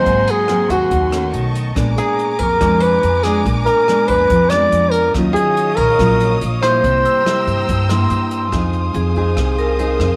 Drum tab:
HH |xxxxxxxx|xxxxxxxx|xxxxxxxx|xxxxxxxx|
SD |--r--r--|r---r--r|--r--r--|r---r--r|
BD |o---o---|o--oo---|o--oo---|o--oo---|

HH |xxxxxxxx|xxxxxxxx|
SD |--r--r--|r---r--r|
BD |o---o---|o--oo--o|